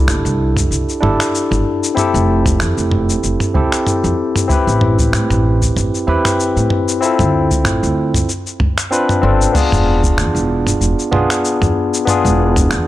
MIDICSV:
0, 0, Header, 1, 4, 480
1, 0, Start_track
1, 0, Tempo, 631579
1, 1497, Time_signature, 4, 2, 24, 8
1, 9785, End_track
2, 0, Start_track
2, 0, Title_t, "Tine electric piano"
2, 0, Program_c, 0, 4
2, 0, Control_c, 0, 64, 127
2, 0, Note_on_c, 0, 62, 86
2, 0, Note_on_c, 0, 64, 81
2, 0, Note_on_c, 0, 67, 77
2, 0, Note_on_c, 0, 69, 97
2, 742, Note_off_c, 0, 62, 0
2, 748, Note_off_c, 0, 64, 0
2, 754, Note_off_c, 0, 67, 0
2, 759, Note_off_c, 0, 69, 0
2, 764, Note_on_c, 0, 62, 78
2, 772, Note_on_c, 0, 64, 69
2, 777, Note_on_c, 0, 67, 67
2, 783, Note_on_c, 0, 69, 87
2, 851, Note_off_c, 0, 62, 0
2, 855, Note_off_c, 0, 64, 0
2, 857, Note_off_c, 0, 67, 0
2, 860, Note_off_c, 0, 69, 0
2, 1479, Note_on_c, 0, 60, 87
2, 1487, Note_on_c, 0, 64, 79
2, 1501, Note_on_c, 0, 67, 81
2, 1508, Control_c, 0, 64, 0
2, 1511, Note_on_c, 0, 69, 100
2, 1638, Control_c, 0, 64, 127
2, 2662, Note_off_c, 0, 60, 0
2, 2666, Note_off_c, 0, 64, 0
2, 2673, Note_off_c, 0, 67, 0
2, 2678, Note_off_c, 0, 69, 0
2, 2691, Note_on_c, 0, 60, 76
2, 2697, Note_on_c, 0, 64, 67
2, 2702, Note_on_c, 0, 67, 74
2, 2709, Note_on_c, 0, 69, 89
2, 2774, Note_off_c, 0, 60, 0
2, 2777, Note_off_c, 0, 64, 0
2, 2780, Note_off_c, 0, 67, 0
2, 2784, Note_off_c, 0, 69, 0
2, 3404, Note_on_c, 0, 60, 84
2, 3415, Note_on_c, 0, 64, 81
2, 3426, Note_on_c, 0, 67, 82
2, 3427, Control_c, 0, 64, 0
2, 3438, Note_on_c, 0, 71, 97
2, 3560, Control_c, 0, 64, 127
2, 4584, Note_off_c, 0, 60, 0
2, 4590, Note_off_c, 0, 64, 0
2, 4595, Note_off_c, 0, 67, 0
2, 4601, Note_off_c, 0, 71, 0
2, 4612, Note_on_c, 0, 60, 79
2, 4618, Note_on_c, 0, 64, 73
2, 4626, Note_on_c, 0, 67, 77
2, 4630, Note_on_c, 0, 71, 89
2, 4695, Note_off_c, 0, 60, 0
2, 4698, Note_off_c, 0, 64, 0
2, 4702, Note_off_c, 0, 67, 0
2, 4704, Note_off_c, 0, 71, 0
2, 5326, Note_on_c, 0, 60, 91
2, 5337, Note_on_c, 0, 64, 85
2, 5347, Note_on_c, 0, 65, 82
2, 5348, Control_c, 0, 64, 0
2, 5357, Note_on_c, 0, 69, 98
2, 5499, Control_c, 0, 64, 127
2, 6278, Note_off_c, 0, 60, 0
2, 6284, Note_off_c, 0, 64, 0
2, 6289, Note_off_c, 0, 65, 0
2, 6294, Note_off_c, 0, 69, 0
2, 6306, Control_c, 0, 64, 0
2, 6431, Control_c, 0, 64, 127
2, 6769, Note_on_c, 0, 60, 93
2, 6775, Note_on_c, 0, 62, 82
2, 6778, Note_on_c, 0, 65, 92
2, 6786, Note_on_c, 0, 71, 99
2, 6987, Note_off_c, 0, 60, 0
2, 6990, Note_off_c, 0, 62, 0
2, 6992, Note_off_c, 0, 65, 0
2, 6995, Note_off_c, 0, 71, 0
2, 7005, Note_on_c, 0, 60, 88
2, 7014, Note_on_c, 0, 62, 75
2, 7016, Note_on_c, 0, 65, 72
2, 7024, Note_on_c, 0, 69, 92
2, 7225, Note_off_c, 0, 60, 0
2, 7230, Note_off_c, 0, 62, 0
2, 7231, Note_off_c, 0, 65, 0
2, 7234, Note_off_c, 0, 69, 0
2, 7240, Note_on_c, 0, 59, 86
2, 7252, Note_on_c, 0, 62, 82
2, 7264, Note_on_c, 0, 65, 84
2, 7267, Control_c, 0, 64, 0
2, 7274, Note_on_c, 0, 68, 95
2, 7413, Control_c, 0, 64, 127
2, 8423, Note_off_c, 0, 59, 0
2, 8429, Note_off_c, 0, 62, 0
2, 8435, Note_off_c, 0, 65, 0
2, 8440, Note_off_c, 0, 68, 0
2, 8446, Note_on_c, 0, 59, 83
2, 8451, Note_on_c, 0, 62, 77
2, 8458, Note_on_c, 0, 65, 79
2, 8463, Note_on_c, 0, 68, 82
2, 8532, Note_off_c, 0, 59, 0
2, 8534, Note_off_c, 0, 62, 0
2, 8538, Note_off_c, 0, 65, 0
2, 8540, Note_off_c, 0, 68, 0
2, 9161, Note_on_c, 0, 59, 87
2, 9172, Note_on_c, 0, 62, 79
2, 9184, Note_on_c, 0, 65, 85
2, 9195, Note_on_c, 0, 68, 98
2, 9785, Note_off_c, 0, 59, 0
2, 9785, Note_off_c, 0, 62, 0
2, 9785, Note_off_c, 0, 65, 0
2, 9785, Note_off_c, 0, 68, 0
2, 9785, End_track
3, 0, Start_track
3, 0, Title_t, "Upright bass"
3, 0, Program_c, 1, 32
3, 59, Note_on_c, 1, 31, 80
3, 143, Note_off_c, 1, 31, 0
3, 190, Note_on_c, 1, 36, 98
3, 476, Note_off_c, 1, 36, 0
3, 536, Note_on_c, 1, 36, 79
3, 622, Note_off_c, 1, 36, 0
3, 780, Note_on_c, 1, 31, 93
3, 863, Note_off_c, 1, 31, 0
3, 1148, Note_on_c, 1, 31, 89
3, 1218, Note_off_c, 1, 31, 0
3, 1627, Note_on_c, 1, 29, 100
3, 1977, Note_on_c, 1, 41, 86
3, 1989, Note_off_c, 1, 29, 0
3, 2062, Note_off_c, 1, 41, 0
3, 2108, Note_on_c, 1, 29, 90
3, 2395, Note_off_c, 1, 29, 0
3, 2459, Note_on_c, 1, 29, 76
3, 2543, Note_off_c, 1, 29, 0
3, 2697, Note_on_c, 1, 36, 88
3, 2782, Note_off_c, 1, 36, 0
3, 3070, Note_on_c, 1, 41, 96
3, 3139, Note_off_c, 1, 41, 0
3, 3551, Note_on_c, 1, 33, 97
3, 3897, Note_on_c, 1, 45, 84
3, 3909, Note_off_c, 1, 33, 0
3, 3982, Note_off_c, 1, 45, 0
3, 4030, Note_on_c, 1, 33, 100
3, 4316, Note_off_c, 1, 33, 0
3, 4378, Note_on_c, 1, 33, 86
3, 4463, Note_off_c, 1, 33, 0
3, 4617, Note_on_c, 1, 40, 88
3, 4702, Note_off_c, 1, 40, 0
3, 4990, Note_on_c, 1, 45, 88
3, 5059, Note_off_c, 1, 45, 0
3, 5472, Note_on_c, 1, 38, 95
3, 5818, Note_off_c, 1, 38, 0
3, 5818, Note_on_c, 1, 33, 90
3, 5902, Note_off_c, 1, 33, 0
3, 5951, Note_on_c, 1, 38, 90
3, 6236, Note_off_c, 1, 38, 0
3, 7015, Note_on_c, 1, 31, 97
3, 7179, Note_off_c, 1, 31, 0
3, 7386, Note_on_c, 1, 28, 102
3, 7735, Note_on_c, 1, 40, 88
3, 7746, Note_off_c, 1, 28, 0
3, 7821, Note_off_c, 1, 40, 0
3, 7863, Note_on_c, 1, 28, 99
3, 8152, Note_off_c, 1, 28, 0
3, 8213, Note_on_c, 1, 28, 83
3, 8300, Note_off_c, 1, 28, 0
3, 8451, Note_on_c, 1, 35, 95
3, 8539, Note_off_c, 1, 35, 0
3, 8828, Note_on_c, 1, 40, 97
3, 8898, Note_off_c, 1, 40, 0
3, 9307, Note_on_c, 1, 28, 101
3, 9654, Note_on_c, 1, 40, 92
3, 9666, Note_off_c, 1, 28, 0
3, 9741, Note_off_c, 1, 40, 0
3, 9785, End_track
4, 0, Start_track
4, 0, Title_t, "Drums"
4, 60, Note_on_c, 9, 26, 71
4, 60, Note_on_c, 9, 45, 72
4, 66, Note_on_c, 9, 82, 54
4, 136, Note_off_c, 9, 26, 0
4, 136, Note_off_c, 9, 45, 0
4, 142, Note_off_c, 9, 82, 0
4, 197, Note_on_c, 9, 82, 31
4, 273, Note_off_c, 9, 82, 0
4, 428, Note_on_c, 9, 36, 59
4, 430, Note_on_c, 9, 45, 70
4, 436, Note_on_c, 9, 82, 63
4, 504, Note_off_c, 9, 36, 0
4, 506, Note_off_c, 9, 45, 0
4, 512, Note_off_c, 9, 82, 0
4, 548, Note_on_c, 9, 82, 51
4, 624, Note_off_c, 9, 82, 0
4, 678, Note_on_c, 9, 82, 30
4, 754, Note_off_c, 9, 82, 0
4, 783, Note_on_c, 9, 45, 72
4, 859, Note_off_c, 9, 45, 0
4, 912, Note_on_c, 9, 26, 71
4, 918, Note_on_c, 9, 82, 60
4, 988, Note_off_c, 9, 26, 0
4, 994, Note_off_c, 9, 82, 0
4, 1027, Note_on_c, 9, 82, 51
4, 1103, Note_off_c, 9, 82, 0
4, 1153, Note_on_c, 9, 45, 70
4, 1159, Note_on_c, 9, 82, 29
4, 1229, Note_off_c, 9, 45, 0
4, 1235, Note_off_c, 9, 82, 0
4, 1396, Note_on_c, 9, 82, 70
4, 1472, Note_off_c, 9, 82, 0
4, 1497, Note_on_c, 9, 45, 69
4, 1503, Note_on_c, 9, 82, 52
4, 1573, Note_off_c, 9, 45, 0
4, 1579, Note_off_c, 9, 82, 0
4, 1635, Note_on_c, 9, 82, 31
4, 1711, Note_off_c, 9, 82, 0
4, 1868, Note_on_c, 9, 36, 95
4, 1868, Note_on_c, 9, 45, 68
4, 1873, Note_on_c, 9, 82, 59
4, 1944, Note_off_c, 9, 36, 0
4, 1944, Note_off_c, 9, 45, 0
4, 1949, Note_off_c, 9, 82, 0
4, 1976, Note_on_c, 9, 26, 67
4, 1981, Note_on_c, 9, 82, 51
4, 2052, Note_off_c, 9, 26, 0
4, 2057, Note_off_c, 9, 82, 0
4, 2112, Note_on_c, 9, 82, 29
4, 2188, Note_off_c, 9, 82, 0
4, 2215, Note_on_c, 9, 45, 71
4, 2291, Note_off_c, 9, 45, 0
4, 2353, Note_on_c, 9, 82, 61
4, 2429, Note_off_c, 9, 82, 0
4, 2460, Note_on_c, 9, 82, 52
4, 2536, Note_off_c, 9, 82, 0
4, 2586, Note_on_c, 9, 45, 71
4, 2592, Note_on_c, 9, 82, 31
4, 2662, Note_off_c, 9, 45, 0
4, 2668, Note_off_c, 9, 82, 0
4, 2697, Note_on_c, 9, 36, 103
4, 2773, Note_off_c, 9, 36, 0
4, 2830, Note_on_c, 9, 26, 70
4, 2835, Note_on_c, 9, 82, 59
4, 2906, Note_off_c, 9, 26, 0
4, 2911, Note_off_c, 9, 82, 0
4, 2938, Note_on_c, 9, 45, 73
4, 2944, Note_on_c, 9, 82, 51
4, 3014, Note_off_c, 9, 45, 0
4, 3020, Note_off_c, 9, 82, 0
4, 3073, Note_on_c, 9, 82, 29
4, 3149, Note_off_c, 9, 82, 0
4, 3311, Note_on_c, 9, 45, 78
4, 3316, Note_on_c, 9, 82, 62
4, 3387, Note_off_c, 9, 45, 0
4, 3392, Note_off_c, 9, 82, 0
4, 3418, Note_on_c, 9, 36, 111
4, 3422, Note_on_c, 9, 82, 51
4, 3494, Note_off_c, 9, 36, 0
4, 3498, Note_off_c, 9, 82, 0
4, 3558, Note_on_c, 9, 82, 32
4, 3634, Note_off_c, 9, 82, 0
4, 3657, Note_on_c, 9, 45, 75
4, 3733, Note_off_c, 9, 45, 0
4, 3790, Note_on_c, 9, 36, 94
4, 3794, Note_on_c, 9, 82, 56
4, 3866, Note_off_c, 9, 36, 0
4, 3870, Note_off_c, 9, 82, 0
4, 3900, Note_on_c, 9, 26, 73
4, 3906, Note_on_c, 9, 82, 52
4, 3976, Note_off_c, 9, 26, 0
4, 3982, Note_off_c, 9, 82, 0
4, 4032, Note_on_c, 9, 45, 76
4, 4037, Note_on_c, 9, 82, 30
4, 4108, Note_off_c, 9, 45, 0
4, 4113, Note_off_c, 9, 82, 0
4, 4271, Note_on_c, 9, 36, 58
4, 4275, Note_on_c, 9, 82, 58
4, 4347, Note_off_c, 9, 36, 0
4, 4351, Note_off_c, 9, 82, 0
4, 4382, Note_on_c, 9, 45, 74
4, 4387, Note_on_c, 9, 82, 48
4, 4458, Note_off_c, 9, 45, 0
4, 4463, Note_off_c, 9, 82, 0
4, 4520, Note_on_c, 9, 82, 28
4, 4596, Note_off_c, 9, 82, 0
4, 4750, Note_on_c, 9, 26, 73
4, 4750, Note_on_c, 9, 45, 74
4, 4756, Note_on_c, 9, 82, 60
4, 4826, Note_off_c, 9, 26, 0
4, 4826, Note_off_c, 9, 45, 0
4, 4832, Note_off_c, 9, 82, 0
4, 4865, Note_on_c, 9, 82, 51
4, 4941, Note_off_c, 9, 82, 0
4, 4994, Note_on_c, 9, 82, 31
4, 5070, Note_off_c, 9, 82, 0
4, 5095, Note_on_c, 9, 45, 76
4, 5171, Note_off_c, 9, 45, 0
4, 5233, Note_on_c, 9, 82, 66
4, 5309, Note_off_c, 9, 82, 0
4, 5340, Note_on_c, 9, 82, 47
4, 5416, Note_off_c, 9, 82, 0
4, 5465, Note_on_c, 9, 45, 88
4, 5471, Note_on_c, 9, 82, 31
4, 5541, Note_off_c, 9, 45, 0
4, 5547, Note_off_c, 9, 82, 0
4, 5709, Note_on_c, 9, 36, 92
4, 5711, Note_on_c, 9, 82, 56
4, 5785, Note_off_c, 9, 36, 0
4, 5787, Note_off_c, 9, 82, 0
4, 5813, Note_on_c, 9, 26, 74
4, 5813, Note_on_c, 9, 45, 80
4, 5819, Note_on_c, 9, 82, 51
4, 5889, Note_off_c, 9, 26, 0
4, 5889, Note_off_c, 9, 45, 0
4, 5895, Note_off_c, 9, 82, 0
4, 5954, Note_on_c, 9, 82, 31
4, 6030, Note_off_c, 9, 82, 0
4, 6189, Note_on_c, 9, 36, 60
4, 6190, Note_on_c, 9, 45, 76
4, 6196, Note_on_c, 9, 82, 61
4, 6265, Note_off_c, 9, 36, 0
4, 6266, Note_off_c, 9, 45, 0
4, 6272, Note_off_c, 9, 82, 0
4, 6302, Note_on_c, 9, 82, 51
4, 6378, Note_off_c, 9, 82, 0
4, 6435, Note_on_c, 9, 82, 31
4, 6511, Note_off_c, 9, 82, 0
4, 6535, Note_on_c, 9, 45, 73
4, 6537, Note_on_c, 9, 36, 108
4, 6611, Note_off_c, 9, 45, 0
4, 6613, Note_off_c, 9, 36, 0
4, 6670, Note_on_c, 9, 26, 77
4, 6676, Note_on_c, 9, 82, 61
4, 6746, Note_off_c, 9, 26, 0
4, 6752, Note_off_c, 9, 82, 0
4, 6784, Note_on_c, 9, 82, 52
4, 6860, Note_off_c, 9, 82, 0
4, 6910, Note_on_c, 9, 45, 78
4, 6916, Note_on_c, 9, 82, 31
4, 6986, Note_off_c, 9, 45, 0
4, 6992, Note_off_c, 9, 82, 0
4, 7156, Note_on_c, 9, 82, 61
4, 7232, Note_off_c, 9, 82, 0
4, 7255, Note_on_c, 9, 36, 117
4, 7257, Note_on_c, 9, 49, 99
4, 7263, Note_on_c, 9, 82, 50
4, 7331, Note_off_c, 9, 36, 0
4, 7333, Note_off_c, 9, 49, 0
4, 7339, Note_off_c, 9, 82, 0
4, 7389, Note_on_c, 9, 45, 81
4, 7395, Note_on_c, 9, 82, 34
4, 7465, Note_off_c, 9, 45, 0
4, 7471, Note_off_c, 9, 82, 0
4, 7627, Note_on_c, 9, 36, 101
4, 7632, Note_on_c, 9, 82, 61
4, 7703, Note_off_c, 9, 36, 0
4, 7708, Note_off_c, 9, 82, 0
4, 7736, Note_on_c, 9, 26, 81
4, 7736, Note_on_c, 9, 45, 79
4, 7742, Note_on_c, 9, 82, 57
4, 7812, Note_off_c, 9, 26, 0
4, 7812, Note_off_c, 9, 45, 0
4, 7818, Note_off_c, 9, 82, 0
4, 7875, Note_on_c, 9, 82, 33
4, 7951, Note_off_c, 9, 82, 0
4, 8106, Note_on_c, 9, 45, 75
4, 8112, Note_on_c, 9, 82, 64
4, 8182, Note_off_c, 9, 45, 0
4, 8188, Note_off_c, 9, 82, 0
4, 8221, Note_on_c, 9, 82, 54
4, 8297, Note_off_c, 9, 82, 0
4, 8356, Note_on_c, 9, 82, 31
4, 8432, Note_off_c, 9, 82, 0
4, 8456, Note_on_c, 9, 45, 81
4, 8532, Note_off_c, 9, 45, 0
4, 8589, Note_on_c, 9, 26, 80
4, 8595, Note_on_c, 9, 82, 65
4, 8665, Note_off_c, 9, 26, 0
4, 8671, Note_off_c, 9, 82, 0
4, 8702, Note_on_c, 9, 82, 51
4, 8778, Note_off_c, 9, 82, 0
4, 8829, Note_on_c, 9, 45, 84
4, 8834, Note_on_c, 9, 82, 33
4, 8905, Note_off_c, 9, 45, 0
4, 8910, Note_off_c, 9, 82, 0
4, 9075, Note_on_c, 9, 82, 67
4, 9151, Note_off_c, 9, 82, 0
4, 9176, Note_on_c, 9, 45, 80
4, 9182, Note_on_c, 9, 82, 56
4, 9252, Note_off_c, 9, 45, 0
4, 9258, Note_off_c, 9, 82, 0
4, 9316, Note_on_c, 9, 82, 38
4, 9392, Note_off_c, 9, 82, 0
4, 9547, Note_on_c, 9, 45, 74
4, 9550, Note_on_c, 9, 36, 114
4, 9553, Note_on_c, 9, 82, 66
4, 9623, Note_off_c, 9, 45, 0
4, 9626, Note_off_c, 9, 36, 0
4, 9629, Note_off_c, 9, 82, 0
4, 9657, Note_on_c, 9, 26, 82
4, 9663, Note_on_c, 9, 82, 53
4, 9733, Note_off_c, 9, 26, 0
4, 9739, Note_off_c, 9, 82, 0
4, 9785, End_track
0, 0, End_of_file